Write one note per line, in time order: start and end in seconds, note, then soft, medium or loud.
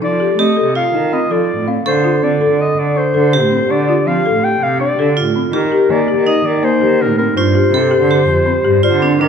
0.00 0.35 F3 medium
0.00 0.17 D#4 medium
0.00 0.35 A4 loud
0.00 0.41 D5 medium
0.20 0.35 G4 medium
0.38 0.63 A3 medium
0.38 0.54 C4 medium
0.38 0.77 G4 medium
0.38 0.76 D#5 medium
0.57 0.87 A4 medium
0.65 0.91 C3 medium
0.75 1.63 F4 medium
0.75 1.15 F5 medium
0.94 1.27 D#3 medium
0.94 1.96 D#4 medium
1.13 1.28 C4 medium
1.13 1.33 D#5 medium
1.31 1.56 F3 medium
1.31 1.61 A4 medium
1.31 1.68 D5 medium
1.58 1.83 A2 medium
1.68 1.83 C4 medium
1.68 2.02 F5 soft
1.85 2.02 D3 medium
1.85 2.01 D4 medium
1.85 3.37 A4 loud
1.85 2.25 C5 medium
2.04 2.19 F4 medium
2.22 2.39 D3 medium
2.22 2.38 C4 medium
2.22 2.63 D5 medium
2.41 2.71 A4 medium
2.50 2.67 D3 medium
2.62 2.81 D#5 medium
2.77 2.94 D3 medium
2.77 2.99 D5 medium
2.96 3.11 D4 medium
2.96 3.73 C5 medium
3.14 3.43 D3 medium
3.14 3.45 A4 medium
3.33 5.22 G4 medium
3.42 3.67 A2 medium
3.52 3.67 C4 medium
3.69 4.03 D3 medium
3.69 3.85 D4 medium
3.69 4.09 D5 medium
3.89 4.04 F4 medium
4.06 4.32 F3 medium
4.06 4.22 C4 medium
4.06 4.45 F5 medium
4.26 4.56 A4 medium
4.33 4.59 A2 medium
4.44 4.65 G5 loud
4.61 4.95 C3 medium
4.61 4.80 F5 medium
4.80 4.95 D4 medium
4.80 5.24 D5 loud
4.98 5.23 D3 medium
4.98 5.29 A4 medium
5.17 5.51 F4 medium
5.25 5.51 A2 medium
5.36 5.51 C4 medium
5.52 5.70 D#3 medium
5.52 5.69 D#4 medium
5.52 6.23 G4 medium
5.52 5.93 A#4 medium
5.72 5.87 G4 medium
5.89 6.06 D#3 medium
5.89 6.05 A#3 medium
5.89 6.30 D5 medium
6.08 6.39 G4 medium
6.17 6.34 D#3 medium
6.27 7.40 D#4 medium
6.27 6.47 D#5 medium
6.45 6.62 D#3 medium
6.45 6.66 D5 medium
6.63 6.78 A#3 medium
6.63 7.03 C5 loud
6.81 7.10 D#3 medium
6.81 7.12 G4 medium
7.01 7.18 A#4 medium
7.08 7.34 A2 medium
7.18 7.34 C4 medium
7.18 7.35 A#4 medium
7.36 7.70 G2 medium
7.36 7.52 D4 medium
7.36 7.71 F4 medium
7.36 8.79 C5 medium
7.55 7.70 G4 medium
7.73 7.98 C3 medium
7.73 7.88 C4 medium
7.73 8.11 A4 medium
7.91 8.22 G4 medium
8.01 8.26 D3 medium
8.11 8.79 G4 medium
8.28 8.62 F2 medium
8.46 8.61 C4 medium
8.64 8.90 G2 medium
8.64 8.95 G4 medium
8.83 9.02 F4 medium
8.83 9.22 C5 medium
8.83 9.28 D5 soft
8.92 9.17 D3 medium
9.02 9.17 C4 medium
9.02 9.19 D4 medium
9.19 9.28 D#3 medium
9.19 9.28 D4 medium
9.19 9.28 D#4 medium
9.19 9.28 A#4 medium